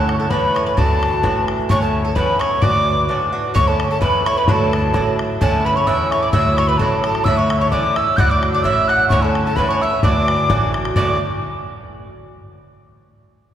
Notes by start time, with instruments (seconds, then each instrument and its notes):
Already playing: upright bass D2, bouzouki A2 D3 C#4 E4, flute A4, mandolin A4, tin whistle A5
0.09 bodhran
0.19 flute A4, mandolin A4, tin whistle A5
0.30 upright bass E2, bouzouki A2 D3 C#4 E4, flute B4, mandolin B4, tin whistle B5, bodhran
0.55 mandolin C#5, tin whistle C#6, bodhran
0.66 mandolin B4, flute B4, tin whistle B5
0.77 upright bass D2, bouzouki A2 E3 D4 F#4, flute A4, mandolin A4, tin whistle A5, bodhran
1.03 bodhran
1.23 upright bass A1, bouzouki A2 E3 D4 F#4, bodhran
1.48 bodhran
1.69 upright bass D2, bouzouki A2 D3 C#4 E4, mandolin C#5, flute C#5, tin whistle C#6, bodhran
1.82 flute A4, tin whistle A5
2.04 mandolin A4, flute A4, tin whistle A5
2.15 upright bass E2, bouzouki A2 D3 C#4 E4, mandolin B4, flute B4, tin whistle B5, bodhran
2.39 mandolin C#5, flute C#5, tin whistle C#6, bodhran
2.62 upright bass D2, bouzouki A2 E3 D4 F#4, mandolin D5, flute D5, tin whistle D6, bodhran
3.09 bouzouki A2 E3 D4 F#4
3.33 bouzouki E3 D4 F#4
3.54 upright bass D2, bouzouki A2 D3 C#4 E4, mandolin C#5, flute C#5, tin whistle C#6, bodhran
3.67 mandolin A4, flute A4, tin whistle A5
3.80 bodhran
3.91 mandolin A4, flute A4, tin whistle A5
4.01 upright bass E2, bouzouki A2 D3 C#4 E4, flute B4, mandolin B4, tin whistle B5, bodhran
4.26 bouzouki D3 C#4 E4, flute C#5, mandolin C#5, tin whistle C#6, bodhran
4.37 flute B4, mandolin B4, tin whistle B5
4.48 upright bass D2, bouzouki A2 F#3 D4 E4, flute A4, mandolin A4, tin whistle A5, bodhran
4.73 bodhran
4.94 upright bass A1, bouzouki A2 F#3 D4 E4, bodhran
5.19 bodhran
5.40 upright bass D2, bouzouki A2 D3 C#4 E4, flute A4, mandolin A4, tin whistle A5, bodhran
5.65 flute B4, mandolin B4, tin whistle B5
5.76 flute C#5, mandolin C#5, tin whistle C#6
5.87 upright bass E2, bouzouki A2 D3 C#4 E4, mandolin E5, flute E5, tin whistle E6, bodhran
6.11 flute C#5, mandolin C#5, tin whistle C#6, bodhran
6.22 mandolin D5, tin whistle D6
6.32 upright bass D2, bouzouki A2 F#3 D4 E4, mandolin E5, flute E5, tin whistle E6, bodhran
6.57 flute C#5, mandolin C#5, tin whistle C#6, bodhran
6.67 flute B4, mandolin B4, tin whistle B5
6.78 upright bass A1, bouzouki A2 F#3 D4, flute A4, mandolin A4, tin whistle A5, bodhran
6.82 bouzouki E4
7.03 mandolin A4, flute A4, tin whistle A5, bodhran
7.15 bodhran
7.24 upright bass D2, bouzouki A2 D3 C#4 E4, flute E5, mandolin E5, tin whistle E6, bodhran
7.37 mandolin C#5, tin whistle C#6
7.50 bodhran
7.60 flute C#5, mandolin C#5, tin whistle C#6
7.71 upright bass E2, bouzouki A2 D3 C#4 E4, flute D5, mandolin D5, tin whistle D6, bodhran
7.96 bouzouki D3 C#4 E4, flute E5, tin whistle E6, bodhran
8.17 upright bass D2, bouzouki A2 F#3 D4 E4, flute F#5, mandolin F#5, tin whistle F#6 G6, bodhran
8.30 flute D5, mandolin D5, tin whistle D6
8.43 bodhran
8.53 flute D5, mandolin D5, tin whistle D6
8.63 upright bass A1, bouzouki A2 F#3 D4, flute E5, mandolin E5, tin whistle E6, bodhran
8.67 bouzouki E4
8.88 flute F#5, mandolin F#5, tin whistle F#6, bodhran
9.09 upright bass D2, bouzouki A2 D3 C#4, flute C#5, mandolin C#5, tin whistle C#6, bodhran
9.13 bouzouki E4
9.22 flute A4, mandolin A4, tin whistle A5
9.35 bodhran
9.46 flute A4, mandolin A4, tin whistle A5
9.56 upright bass E2, bouzouki A2 D3 C#4 E4, flute B4, mandolin B4, tin whistle B5, bodhran
9.69 flute C#5, mandolin C#5, tin whistle C#6
9.81 bouzouki D3 C#4 E4, flute E5, mandolin E5, tin whistle E6
10.03 upright bass D2, bouzouki A2 E3 D4 F#4, flute D5, mandolin D5, tin whistle D6, bodhran
10.28 bodhran
10.50 upright bass A1, bouzouki A2 E3 D4 F#4, bodhran
10.74 bodhran
10.85 bodhran
10.96 upright bass D2, bouzouki A2 E3 D4 F#4, flute D5, mandolin D5, tin whistle D6, bodhran
11.01 flute D5
11.08 flute D5